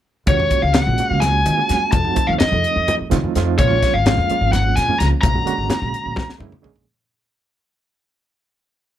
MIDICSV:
0, 0, Header, 1, 6, 480
1, 0, Start_track
1, 0, Key_signature, -6, "minor"
1, 0, Tempo, 470219
1, 280, Time_signature, 7, 3, 24, 8
1, 9168, End_track
2, 0, Start_track
2, 0, Title_t, "Lead electric guitar"
2, 0, Program_c, 0, 29
2, 288, Note_on_c, 0, 73, 66
2, 621, Note_off_c, 0, 73, 0
2, 636, Note_on_c, 0, 77, 72
2, 751, Note_off_c, 0, 77, 0
2, 760, Note_on_c, 0, 78, 79
2, 1137, Note_off_c, 0, 78, 0
2, 1137, Note_on_c, 0, 77, 79
2, 1227, Note_on_c, 0, 80, 82
2, 1259, Note_off_c, 0, 77, 0
2, 1952, Note_off_c, 0, 80, 0
2, 1956, Note_on_c, 0, 81, 88
2, 2318, Note_on_c, 0, 77, 78
2, 2337, Note_off_c, 0, 81, 0
2, 2369, Note_off_c, 0, 77, 0
2, 2441, Note_on_c, 0, 75, 70
2, 2990, Note_off_c, 0, 75, 0
2, 3663, Note_on_c, 0, 73, 65
2, 4020, Note_on_c, 0, 77, 79
2, 4031, Note_off_c, 0, 73, 0
2, 4614, Note_off_c, 0, 77, 0
2, 4618, Note_on_c, 0, 78, 82
2, 4856, Note_on_c, 0, 80, 87
2, 4865, Note_off_c, 0, 78, 0
2, 5080, Note_off_c, 0, 80, 0
2, 5098, Note_on_c, 0, 82, 84
2, 5163, Note_off_c, 0, 82, 0
2, 5323, Note_on_c, 0, 82, 81
2, 6485, Note_off_c, 0, 82, 0
2, 9168, End_track
3, 0, Start_track
3, 0, Title_t, "Reed electric piano"
3, 0, Program_c, 1, 4
3, 269, Note_on_c, 1, 56, 59
3, 269, Note_on_c, 1, 65, 69
3, 279, Note_on_c, 1, 58, 62
3, 279, Note_on_c, 1, 66, 73
3, 280, Note_on_c, 1, 61, 62
3, 726, Note_off_c, 1, 65, 0
3, 727, Note_off_c, 1, 56, 0
3, 731, Note_off_c, 1, 58, 0
3, 732, Note_off_c, 1, 61, 0
3, 732, Note_off_c, 1, 66, 0
3, 758, Note_on_c, 1, 53, 65
3, 768, Note_on_c, 1, 56, 54
3, 768, Note_on_c, 1, 58, 62
3, 768, Note_on_c, 1, 61, 56
3, 776, Note_on_c, 1, 66, 69
3, 987, Note_off_c, 1, 53, 0
3, 991, Note_off_c, 1, 58, 0
3, 992, Note_off_c, 1, 56, 0
3, 992, Note_off_c, 1, 61, 0
3, 996, Note_off_c, 1, 66, 0
3, 1007, Note_on_c, 1, 65, 59
3, 1012, Note_on_c, 1, 58, 52
3, 1013, Note_on_c, 1, 56, 52
3, 1018, Note_on_c, 1, 61, 52
3, 1022, Note_on_c, 1, 66, 69
3, 1571, Note_off_c, 1, 65, 0
3, 1573, Note_off_c, 1, 58, 0
3, 1574, Note_off_c, 1, 56, 0
3, 1577, Note_off_c, 1, 61, 0
3, 1578, Note_off_c, 1, 66, 0
3, 1602, Note_on_c, 1, 65, 62
3, 1607, Note_on_c, 1, 56, 56
3, 1609, Note_on_c, 1, 58, 58
3, 1615, Note_on_c, 1, 61, 59
3, 1624, Note_on_c, 1, 66, 69
3, 1967, Note_off_c, 1, 65, 0
3, 1970, Note_off_c, 1, 56, 0
3, 1971, Note_off_c, 1, 58, 0
3, 1974, Note_off_c, 1, 61, 0
3, 1978, Note_off_c, 1, 66, 0
3, 2082, Note_on_c, 1, 53, 66
3, 2089, Note_on_c, 1, 57, 60
3, 2089, Note_on_c, 1, 60, 60
3, 2090, Note_on_c, 1, 63, 58
3, 2099, Note_on_c, 1, 66, 72
3, 2186, Note_off_c, 1, 53, 0
3, 2192, Note_off_c, 1, 57, 0
3, 2192, Note_off_c, 1, 60, 0
3, 2195, Note_off_c, 1, 63, 0
3, 2198, Note_on_c, 1, 53, 61
3, 2204, Note_on_c, 1, 57, 58
3, 2204, Note_on_c, 1, 60, 54
3, 2207, Note_on_c, 1, 63, 55
3, 2208, Note_off_c, 1, 66, 0
3, 2216, Note_on_c, 1, 69, 65
3, 3107, Note_off_c, 1, 53, 0
3, 3110, Note_off_c, 1, 57, 0
3, 3110, Note_off_c, 1, 60, 0
3, 3112, Note_off_c, 1, 63, 0
3, 3116, Note_off_c, 1, 69, 0
3, 3166, Note_on_c, 1, 53, 84
3, 3170, Note_on_c, 1, 57, 77
3, 3177, Note_on_c, 1, 60, 77
3, 3180, Note_on_c, 1, 63, 77
3, 3183, Note_on_c, 1, 65, 91
3, 3396, Note_off_c, 1, 53, 0
3, 3398, Note_off_c, 1, 57, 0
3, 3402, Note_off_c, 1, 60, 0
3, 3403, Note_off_c, 1, 63, 0
3, 3405, Note_off_c, 1, 65, 0
3, 3430, Note_on_c, 1, 53, 86
3, 3432, Note_on_c, 1, 57, 76
3, 3436, Note_on_c, 1, 60, 78
3, 3444, Note_on_c, 1, 63, 79
3, 3449, Note_on_c, 1, 65, 92
3, 3649, Note_off_c, 1, 53, 0
3, 3649, Note_off_c, 1, 57, 0
3, 3652, Note_off_c, 1, 60, 0
3, 3656, Note_off_c, 1, 63, 0
3, 3658, Note_off_c, 1, 65, 0
3, 3672, Note_on_c, 1, 56, 63
3, 3674, Note_on_c, 1, 53, 72
3, 3678, Note_on_c, 1, 61, 66
3, 3680, Note_on_c, 1, 58, 65
3, 3685, Note_on_c, 1, 65, 80
3, 4115, Note_off_c, 1, 53, 0
3, 4115, Note_off_c, 1, 56, 0
3, 4118, Note_off_c, 1, 58, 0
3, 4118, Note_off_c, 1, 61, 0
3, 4121, Note_off_c, 1, 65, 0
3, 4146, Note_on_c, 1, 53, 64
3, 4149, Note_on_c, 1, 56, 63
3, 4153, Note_on_c, 1, 58, 59
3, 4154, Note_on_c, 1, 65, 74
3, 4156, Note_on_c, 1, 61, 62
3, 4367, Note_off_c, 1, 53, 0
3, 4369, Note_off_c, 1, 56, 0
3, 4370, Note_off_c, 1, 58, 0
3, 4371, Note_off_c, 1, 65, 0
3, 4372, Note_off_c, 1, 61, 0
3, 4394, Note_on_c, 1, 53, 60
3, 4397, Note_on_c, 1, 56, 52
3, 4398, Note_on_c, 1, 58, 56
3, 4401, Note_on_c, 1, 61, 57
3, 4408, Note_on_c, 1, 65, 67
3, 4947, Note_off_c, 1, 53, 0
3, 4949, Note_off_c, 1, 56, 0
3, 4949, Note_off_c, 1, 58, 0
3, 4951, Note_off_c, 1, 61, 0
3, 4954, Note_off_c, 1, 65, 0
3, 4985, Note_on_c, 1, 53, 62
3, 4987, Note_on_c, 1, 56, 55
3, 4993, Note_on_c, 1, 61, 58
3, 4994, Note_on_c, 1, 58, 59
3, 5002, Note_on_c, 1, 65, 69
3, 5341, Note_off_c, 1, 53, 0
3, 5342, Note_off_c, 1, 56, 0
3, 5345, Note_off_c, 1, 61, 0
3, 5346, Note_off_c, 1, 58, 0
3, 5349, Note_off_c, 1, 65, 0
3, 5456, Note_on_c, 1, 50, 67
3, 5459, Note_on_c, 1, 56, 60
3, 5467, Note_on_c, 1, 58, 64
3, 5467, Note_on_c, 1, 66, 77
3, 5468, Note_on_c, 1, 61, 61
3, 5553, Note_off_c, 1, 50, 0
3, 5558, Note_off_c, 1, 56, 0
3, 5562, Note_off_c, 1, 58, 0
3, 5565, Note_on_c, 1, 50, 62
3, 5568, Note_off_c, 1, 61, 0
3, 5569, Note_off_c, 1, 66, 0
3, 5570, Note_on_c, 1, 56, 55
3, 5574, Note_on_c, 1, 58, 55
3, 5580, Note_on_c, 1, 61, 53
3, 5582, Note_on_c, 1, 66, 68
3, 6465, Note_off_c, 1, 50, 0
3, 6468, Note_off_c, 1, 56, 0
3, 6470, Note_off_c, 1, 58, 0
3, 6473, Note_off_c, 1, 61, 0
3, 6474, Note_off_c, 1, 66, 0
3, 6517, Note_on_c, 1, 50, 80
3, 6520, Note_on_c, 1, 58, 77
3, 6523, Note_on_c, 1, 56, 77
3, 6530, Note_on_c, 1, 61, 73
3, 6533, Note_on_c, 1, 64, 85
3, 6743, Note_off_c, 1, 50, 0
3, 6746, Note_off_c, 1, 56, 0
3, 6750, Note_off_c, 1, 58, 0
3, 6755, Note_off_c, 1, 61, 0
3, 6756, Note_off_c, 1, 64, 0
3, 6756, Note_on_c, 1, 50, 80
3, 6758, Note_on_c, 1, 56, 77
3, 6765, Note_on_c, 1, 58, 73
3, 6768, Note_on_c, 1, 61, 75
3, 6771, Note_on_c, 1, 68, 92
3, 6987, Note_off_c, 1, 50, 0
3, 6988, Note_off_c, 1, 56, 0
3, 6991, Note_off_c, 1, 58, 0
3, 6993, Note_off_c, 1, 61, 0
3, 6994, Note_off_c, 1, 68, 0
3, 9168, End_track
4, 0, Start_track
4, 0, Title_t, "Upright bass"
4, 0, Program_c, 2, 32
4, 277, Note_on_c, 2, 39, 79
4, 491, Note_off_c, 2, 39, 0
4, 642, Note_on_c, 2, 37, 70
4, 855, Note_off_c, 2, 37, 0
4, 888, Note_on_c, 2, 34, 77
4, 993, Note_off_c, 2, 34, 0
4, 1131, Note_on_c, 2, 37, 70
4, 1447, Note_off_c, 2, 37, 0
4, 1489, Note_on_c, 2, 51, 69
4, 1595, Note_off_c, 2, 51, 0
4, 1734, Note_on_c, 2, 42, 85
4, 1838, Note_off_c, 2, 42, 0
4, 1968, Note_on_c, 2, 41, 83
4, 2182, Note_off_c, 2, 41, 0
4, 2335, Note_on_c, 2, 39, 68
4, 2440, Note_off_c, 2, 39, 0
4, 2573, Note_on_c, 2, 41, 83
4, 2680, Note_off_c, 2, 41, 0
4, 2817, Note_on_c, 2, 41, 74
4, 2922, Note_off_c, 2, 41, 0
4, 3183, Note_on_c, 2, 51, 83
4, 3286, Note_off_c, 2, 51, 0
4, 3427, Note_on_c, 2, 41, 74
4, 3635, Note_off_c, 2, 41, 0
4, 3666, Note_on_c, 2, 34, 87
4, 3874, Note_off_c, 2, 34, 0
4, 4026, Note_on_c, 2, 32, 73
4, 4234, Note_off_c, 2, 32, 0
4, 4270, Note_on_c, 2, 41, 82
4, 4370, Note_off_c, 2, 41, 0
4, 4503, Note_on_c, 2, 32, 74
4, 4818, Note_off_c, 2, 32, 0
4, 4870, Note_on_c, 2, 46, 76
4, 4970, Note_off_c, 2, 46, 0
4, 5110, Note_on_c, 2, 37, 81
4, 5210, Note_off_c, 2, 37, 0
4, 5344, Note_on_c, 2, 34, 87
4, 5552, Note_off_c, 2, 34, 0
4, 5697, Note_on_c, 2, 32, 72
4, 5802, Note_off_c, 2, 32, 0
4, 5940, Note_on_c, 2, 34, 80
4, 6043, Note_off_c, 2, 34, 0
4, 6185, Note_on_c, 2, 34, 69
4, 6286, Note_off_c, 2, 34, 0
4, 6535, Note_on_c, 2, 42, 84
4, 6639, Note_off_c, 2, 42, 0
4, 6779, Note_on_c, 2, 34, 70
4, 6986, Note_off_c, 2, 34, 0
4, 9168, End_track
5, 0, Start_track
5, 0, Title_t, "Muted upright bass strokes"
5, 1013, Note_on_c, 9, 29, 31
5, 1115, Note_off_c, 9, 29, 0
5, 2213, Note_on_c, 9, 29, 30
5, 2315, Note_off_c, 9, 29, 0
5, 2461, Note_on_c, 9, 29, 31
5, 2563, Note_off_c, 9, 29, 0
5, 3067, Note_on_c, 9, 29, 33
5, 3169, Note_off_c, 9, 29, 0
5, 4390, Note_on_c, 9, 29, 33
5, 4492, Note_off_c, 9, 29, 0
5, 5587, Note_on_c, 9, 29, 31
5, 5689, Note_off_c, 9, 29, 0
5, 5822, Note_on_c, 9, 29, 31
5, 5924, Note_off_c, 9, 29, 0
5, 6418, Note_on_c, 9, 29, 30
5, 6520, Note_off_c, 9, 29, 0
5, 9168, End_track
6, 0, Start_track
6, 0, Title_t, "Drums"
6, 275, Note_on_c, 9, 42, 71
6, 278, Note_on_c, 9, 36, 93
6, 282, Note_on_c, 9, 63, 73
6, 377, Note_off_c, 9, 42, 0
6, 380, Note_off_c, 9, 36, 0
6, 384, Note_off_c, 9, 63, 0
6, 405, Note_on_c, 9, 64, 62
6, 507, Note_off_c, 9, 64, 0
6, 516, Note_on_c, 9, 42, 52
6, 519, Note_on_c, 9, 36, 65
6, 619, Note_off_c, 9, 42, 0
6, 621, Note_off_c, 9, 36, 0
6, 753, Note_on_c, 9, 42, 75
6, 760, Note_on_c, 9, 38, 96
6, 764, Note_on_c, 9, 64, 74
6, 855, Note_off_c, 9, 42, 0
6, 862, Note_off_c, 9, 38, 0
6, 866, Note_off_c, 9, 64, 0
6, 884, Note_on_c, 9, 63, 59
6, 884, Note_on_c, 9, 64, 23
6, 986, Note_off_c, 9, 63, 0
6, 986, Note_off_c, 9, 64, 0
6, 1000, Note_on_c, 9, 42, 55
6, 1102, Note_off_c, 9, 42, 0
6, 1242, Note_on_c, 9, 64, 78
6, 1243, Note_on_c, 9, 42, 73
6, 1250, Note_on_c, 9, 38, 28
6, 1344, Note_off_c, 9, 64, 0
6, 1345, Note_off_c, 9, 42, 0
6, 1352, Note_off_c, 9, 38, 0
6, 1487, Note_on_c, 9, 42, 57
6, 1487, Note_on_c, 9, 63, 71
6, 1589, Note_off_c, 9, 42, 0
6, 1589, Note_off_c, 9, 63, 0
6, 1727, Note_on_c, 9, 42, 52
6, 1734, Note_on_c, 9, 38, 31
6, 1829, Note_off_c, 9, 42, 0
6, 1836, Note_off_c, 9, 38, 0
6, 1963, Note_on_c, 9, 42, 76
6, 1968, Note_on_c, 9, 63, 78
6, 1969, Note_on_c, 9, 36, 88
6, 2065, Note_off_c, 9, 42, 0
6, 2070, Note_off_c, 9, 63, 0
6, 2071, Note_off_c, 9, 36, 0
6, 2090, Note_on_c, 9, 64, 61
6, 2192, Note_off_c, 9, 64, 0
6, 2207, Note_on_c, 9, 42, 58
6, 2212, Note_on_c, 9, 36, 68
6, 2309, Note_off_c, 9, 42, 0
6, 2314, Note_off_c, 9, 36, 0
6, 2449, Note_on_c, 9, 42, 77
6, 2453, Note_on_c, 9, 64, 78
6, 2456, Note_on_c, 9, 38, 97
6, 2551, Note_off_c, 9, 42, 0
6, 2555, Note_off_c, 9, 64, 0
6, 2558, Note_off_c, 9, 38, 0
6, 2578, Note_on_c, 9, 63, 60
6, 2578, Note_on_c, 9, 64, 24
6, 2680, Note_off_c, 9, 63, 0
6, 2680, Note_off_c, 9, 64, 0
6, 2697, Note_on_c, 9, 42, 49
6, 2799, Note_off_c, 9, 42, 0
6, 2823, Note_on_c, 9, 64, 26
6, 2925, Note_off_c, 9, 64, 0
6, 2940, Note_on_c, 9, 42, 63
6, 2942, Note_on_c, 9, 64, 84
6, 3042, Note_off_c, 9, 42, 0
6, 3044, Note_off_c, 9, 64, 0
6, 3177, Note_on_c, 9, 42, 51
6, 3185, Note_on_c, 9, 38, 30
6, 3185, Note_on_c, 9, 63, 77
6, 3280, Note_off_c, 9, 42, 0
6, 3287, Note_off_c, 9, 38, 0
6, 3287, Note_off_c, 9, 63, 0
6, 3308, Note_on_c, 9, 64, 66
6, 3410, Note_off_c, 9, 64, 0
6, 3425, Note_on_c, 9, 42, 54
6, 3432, Note_on_c, 9, 38, 28
6, 3527, Note_off_c, 9, 42, 0
6, 3534, Note_off_c, 9, 38, 0
6, 3660, Note_on_c, 9, 42, 71
6, 3662, Note_on_c, 9, 63, 87
6, 3663, Note_on_c, 9, 36, 97
6, 3762, Note_off_c, 9, 42, 0
6, 3764, Note_off_c, 9, 63, 0
6, 3766, Note_off_c, 9, 36, 0
6, 3783, Note_on_c, 9, 64, 65
6, 3885, Note_off_c, 9, 64, 0
6, 3905, Note_on_c, 9, 36, 72
6, 3907, Note_on_c, 9, 42, 54
6, 3914, Note_on_c, 9, 38, 32
6, 4007, Note_off_c, 9, 36, 0
6, 4009, Note_off_c, 9, 42, 0
6, 4016, Note_off_c, 9, 38, 0
6, 4142, Note_on_c, 9, 64, 83
6, 4144, Note_on_c, 9, 42, 71
6, 4151, Note_on_c, 9, 38, 102
6, 4244, Note_off_c, 9, 64, 0
6, 4246, Note_off_c, 9, 42, 0
6, 4253, Note_off_c, 9, 38, 0
6, 4262, Note_on_c, 9, 63, 66
6, 4262, Note_on_c, 9, 64, 27
6, 4364, Note_off_c, 9, 63, 0
6, 4364, Note_off_c, 9, 64, 0
6, 4386, Note_on_c, 9, 42, 50
6, 4488, Note_off_c, 9, 42, 0
6, 4509, Note_on_c, 9, 64, 28
6, 4611, Note_off_c, 9, 64, 0
6, 4624, Note_on_c, 9, 64, 83
6, 4626, Note_on_c, 9, 42, 68
6, 4634, Note_on_c, 9, 38, 28
6, 4726, Note_off_c, 9, 64, 0
6, 4728, Note_off_c, 9, 42, 0
6, 4736, Note_off_c, 9, 38, 0
6, 4866, Note_on_c, 9, 42, 56
6, 4873, Note_on_c, 9, 38, 30
6, 4968, Note_off_c, 9, 42, 0
6, 4975, Note_off_c, 9, 38, 0
6, 4986, Note_on_c, 9, 64, 67
6, 5088, Note_off_c, 9, 64, 0
6, 5107, Note_on_c, 9, 42, 57
6, 5114, Note_on_c, 9, 38, 28
6, 5209, Note_off_c, 9, 42, 0
6, 5216, Note_off_c, 9, 38, 0
6, 5341, Note_on_c, 9, 42, 78
6, 5343, Note_on_c, 9, 36, 96
6, 5344, Note_on_c, 9, 63, 87
6, 5443, Note_off_c, 9, 42, 0
6, 5445, Note_off_c, 9, 36, 0
6, 5446, Note_off_c, 9, 63, 0
6, 5461, Note_on_c, 9, 64, 69
6, 5563, Note_off_c, 9, 64, 0
6, 5583, Note_on_c, 9, 42, 59
6, 5686, Note_off_c, 9, 42, 0
6, 5699, Note_on_c, 9, 64, 28
6, 5801, Note_off_c, 9, 64, 0
6, 5815, Note_on_c, 9, 64, 91
6, 5821, Note_on_c, 9, 42, 79
6, 5828, Note_on_c, 9, 38, 98
6, 5917, Note_off_c, 9, 64, 0
6, 5923, Note_off_c, 9, 42, 0
6, 5931, Note_off_c, 9, 38, 0
6, 5940, Note_on_c, 9, 63, 67
6, 5940, Note_on_c, 9, 64, 26
6, 6042, Note_off_c, 9, 63, 0
6, 6042, Note_off_c, 9, 64, 0
6, 6064, Note_on_c, 9, 42, 54
6, 6166, Note_off_c, 9, 42, 0
6, 6290, Note_on_c, 9, 64, 89
6, 6297, Note_on_c, 9, 36, 88
6, 6309, Note_on_c, 9, 38, 49
6, 6392, Note_off_c, 9, 64, 0
6, 6399, Note_off_c, 9, 36, 0
6, 6411, Note_off_c, 9, 38, 0
6, 6426, Note_on_c, 9, 38, 45
6, 6528, Note_off_c, 9, 38, 0
6, 6537, Note_on_c, 9, 63, 84
6, 6639, Note_off_c, 9, 63, 0
6, 6659, Note_on_c, 9, 47, 61
6, 6659, Note_on_c, 9, 64, 68
6, 6761, Note_off_c, 9, 47, 0
6, 6761, Note_off_c, 9, 64, 0
6, 6780, Note_on_c, 9, 45, 74
6, 6883, Note_off_c, 9, 45, 0
6, 6898, Note_on_c, 9, 43, 72
6, 7000, Note_off_c, 9, 43, 0
6, 9168, End_track
0, 0, End_of_file